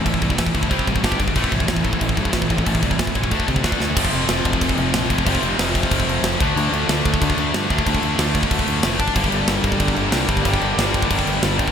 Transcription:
<<
  \new Staff \with { instrumentName = "Analog synth pad" } { \time 4/4 \key f \major \tempo 4 = 185 r1 | r1 | r1 | r1 |
r1 | r1 | r1 | <d' g' bes' g''>1~ |
<d' g' bes' g''>1 | }
  \new Staff \with { instrumentName = "Distorted electric guitar" } { \time 4/4 \key f \major <a, e a c' e' a'>4. <a, e a c' e' a'>8 <c g c' g'>4 <g d' g' d''>4 | <a c' e' a'>4. <a c' e' a'>2~ <a c' e' a'>8 | <a c' e' a'>4. <a c' e' a'>8 <d a d' a'>4 <d a d' a'>4 | <f, c f a c'>2.~ <f, c f a c'>8 <f, c f a c'>8 |
<f, c f a c'>2.~ <f, c f a c'>8 <d f a d'>8~ | <d f a d'>2. <d f a d'>8 <d f a d'>8~ | <d f a d'>2. <d f a d'>8 r8 | <g, d g bes d'>2.~ <g, d g bes d'>8 <g, d g bes d'>8 |
<g, d g bes d'>2.~ <g, d g bes d'>8 <g, d g bes d'>8 | }
  \new Staff \with { instrumentName = "Distorted electric guitar" } { \clef bass \time 4/4 \key f \major <a, e>8 <a, e>16 <a, e>16 <a, e>8 <a, e>16 <a, e>16 <c g c'>8 <c g>16 <c g>16 <g, d g>8 <g, d>16 <g, d>16 | <a, e a>8 <a, e>16 <a, e>16 <a, e>8 <a, e>16 <a, e>16 <a, e>8 <a, e>16 <a, e>16 <a, e>8 <a, e>16 <a, e>16 | <a, e>8 <a, e>16 <a, e>16 <a, e>8 <a, e>16 <a, e>16 <d a d'>8 <d a>16 <d a>16 <d a d'>8 <d a>16 <d a>16 | <f, c f>1 |
<f, c f>2.~ <f, c f>8 <d a d'>8~ | <d a d'>2.~ <d a d'>8 <d a d'>8~ | <d a d'>2.~ <d a d'>8 r8 | <g, d g>1 |
<g, d g>1 | }
  \new Staff \with { instrumentName = "Fingered electric bass" } { \clef bass \time 4/4 \key f \major a,,8 c,8 e,8 d,8 c,8 a,,8 g,,8 g,,8 | a,,8 c,8 e,8 a,,8 a,,8 g,8 a,,8 a,,8 | a,,8 c,8 e,8 a,,8 d,8 c8 d,8 d,8 | f,,8 f,,8 f,,8 f,,8 f,,8 f,,8 bes,,8 f,,8 |
f,,8 f,,8 f,,4 f,,8 f,,8 f,,8 d,8 | d,8 d,8 d,8 d,8 d,8 d,8 g,8 d,8 | d,8 d,8 d,4 d,8 d,8 f,,4 | g,,8 g,,8 g,,8 g,,8 g,,8 g,,8 c,8 g,,8 |
g,,8 g,,8 g,,4 g,,8 g,,8 g,,4 | }
  \new DrumStaff \with { instrumentName = "Drums" } \drummode { \time 4/4 <cymc bd>16 bd16 <cymc bd>16 bd16 <cymc bd sn>16 bd16 <cymc bd>16 bd16 <cymc bd>16 bd16 <cymc bd>16 bd16 <cymc bd sn>16 bd16 <cymc bd>16 bd16 | <cymc bd>16 bd16 <cymc bd>16 bd16 <cymc bd sn>16 bd16 <cymc bd>16 bd16 <cymc bd>16 bd16 <cymc bd>16 bd16 <cymc bd sn>16 bd16 <cymc bd>16 bd16 | <cymc bd>16 bd16 <cymc bd>16 bd16 <cymc bd sn>16 bd16 <cymc bd>16 bd16 <cymc bd>16 bd16 <cymc bd>16 bd16 <cymc bd sn>16 bd16 sn8 | <cymc bd>16 bd16 cymc8 <cymc sn>8 <cymc bd>16 bd16 <cymc bd>16 bd16 cymc8 <cymc sn>8 <cymc bd>16 bd16 |
<cymc bd>16 bd16 cymc8 <cymc sn>8 <cymc bd>16 bd16 <cymc bd>16 bd16 cymc8 <cymc sn>8 <cymc bd>8 | cymc8 cymc8 <cymc sn>8 <cymc bd>16 bd16 <cymc bd>16 bd16 cymc8 <cymc sn>8 <cymc bd>16 bd16 | <cymc bd>16 bd16 cymc8 <cymc sn>8 <cymc bd>16 bd16 <cymc bd>16 bd16 cymc8 <cymc sn>8 <cymc bd>16 bd16 | <cymc bd>16 bd16 cymc8 <cymc sn>8 <cymc bd>16 bd16 <cymc bd>16 bd16 cymc8 <cymc sn>8 <cymc bd>16 bd16 |
<cymc bd>16 bd16 cymc8 <cymc sn>8 <cymc bd>16 bd16 <cymc bd>16 bd16 cymc8 <cymc sn>8 <cymc bd>16 bd16 | }
>>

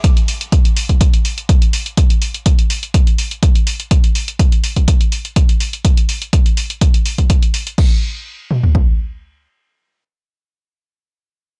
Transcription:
\new DrumStaff \with { instrumentName = "Drums" } \drummode { \time 4/4 \tempo 4 = 124 <hh bd>16 hh16 hho16 hh16 <hh bd>16 hh16 hho16 <hh bd>16 <hh bd>16 hh16 hho16 hh16 <hh bd>16 hh16 hho16 hh16 | <hh bd>16 hh16 hho16 hh16 <hh bd>16 hh16 hho16 hh16 <hh bd>16 hh16 hho16 hh16 <hh bd>16 hh16 hho16 hh16 | <hh bd>16 hh16 hho16 hh16 <hh bd>16 hh16 hho16 <hh bd>16 <hh bd>16 hh16 hho16 hh16 <hh bd>16 hh16 hho16 hh16 | <hh bd>16 hh16 hho16 hh16 <hh bd>16 hh16 hho16 hh16 <hh bd>16 hh16 hho16 <hh bd>16 <hh bd>16 hh16 hho16 hh16 |
<cymc bd>4 r8 toml16 tomfh16 bd4 r4 | r4 r4 r4 r4 | }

